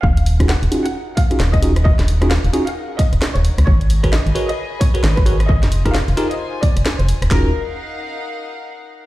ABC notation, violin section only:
X:1
M:4/4
L:1/16
Q:"Swing 16ths" 1/4=132
K:Ebm
V:1 name="Violin section"
f2 z2 g z2 g z2 f z2 e z2 | e2 z2 f z2 f z2 e z2 d z2 | d2 z2 e z2 e z2 d z2 c z2 | e2 z2 f z2 e z2 =d z2 =c z2 |
B2 z12 z2 |]